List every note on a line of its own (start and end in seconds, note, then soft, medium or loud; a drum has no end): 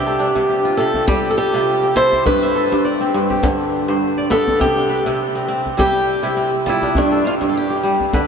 0.00 0.34 C3 medium
0.00 0.77 G4 medium
0.00 0.58 D5 medium
0.00 0.63 E5 medium
0.07 1.37 A4 medium
0.20 1.87 D4 medium
0.35 0.78 C3 medium
0.35 djembe slap soft
0.49 1.83 G4 medium
0.49 djembe slap soft
0.65 1.54 F4 medium
0.77 1.53 C3 medium
0.77 1.05 A4 medium
0.77 djembe slap soft
0.94 2.75 C4 medium
0.94 djembe slap soft
0.94 djembe tone medium
1.07 2.30 G3 medium
1.07 1.30 G4 loud
1.07 djembe slap medium
1.07 djembe bass medium
1.30 1.36 A4 medium
1.37 1.96 G4 loud
1.37 1.96 A4 medium
1.54 2.30 C3 medium
1.54 2.02 F4 medium
1.66 djembe slap soft
1.83 3.24 G4 medium
1.96 3.53 E4 medium
1.96 2.55 A4 medium
1.96 2.23 C5 loud
1.96 djembe slap medium
2.13 djembe tone medium
2.25 2.71 G2 medium
2.25 3.98 B4 medium
2.25 djembe slap soft
2.25 djembe bass medium
2.42 3.46 E5 medium
2.42 djembe slap soft
2.55 3.87 A4 medium
2.72 3.13 G2 medium
2.72 djembe slap medium
2.85 3.95 D5 medium
2.85 djembe slap soft
3.01 4.36 C4 medium
3.14 3.87 G2 medium
3.14 djembe slap soft
3.30 4.71 G4 medium
3.30 djembe tone medium
3.43 4.65 D3 medium
3.43 djembe slap medium
3.43 djembe bass medium
3.59 djembe slap soft
3.88 4.65 G2 medium
3.88 4.36 C5 medium
4.18 5.28 D5 medium
4.18 djembe slap soft
4.30 4.66 B3 medium
4.30 4.61 A4 loud
4.30 5.34 E5 medium
4.30 djembe slap medium
4.48 djembe slap soft
4.48 djembe tone medium
4.60 5.05 C3 medium
4.60 5.78 G4 medium
4.60 djembe bass medium
4.76 6.44 D4 medium
4.76 djembe slap soft
4.90 5.41 B4 medium
5.06 6.22 C3 medium
5.06 djembe slap soft
5.35 5.48 C4 medium
5.48 6.36 C4 medium
5.66 djembe tone medium
5.77 6.66 G3 medium
5.77 6.23 E4 medium
5.77 6.69 G4 medium
5.77 djembe slap medium
5.77 djembe bass medium
5.96 djembe slap soft
6.08 djembe slap soft
6.23 7.00 C3 medium
6.23 6.72 E4 medium
6.23 djembe slap soft
6.37 8.20 C4 medium
6.37 djembe slap soft
6.54 djembe slap soft
6.66 7.00 G3 medium
6.66 6.98 E4 medium
6.66 8.18 F4 medium
6.66 djembe slap medium
6.82 8.27 D4 medium
6.82 djembe tone soft
6.95 7.40 G2 medium
6.95 7.27 D4 medium
6.95 djembe bass medium
7.12 8.27 A4 medium
7.12 djembe slap soft
7.25 7.33 F4 medium
7.25 8.25 F5 medium
7.41 8.27 G2 medium
7.41 djembe slap soft
7.49 7.55 A4 medium
7.57 8.27 G4 medium
7.70 8.27 G4 medium
7.83 8.18 G3 medium
8.00 djembe tone soft
8.13 8.27 D3 medium
8.13 8.27 B4 medium
8.13 djembe slap medium
8.13 djembe bass medium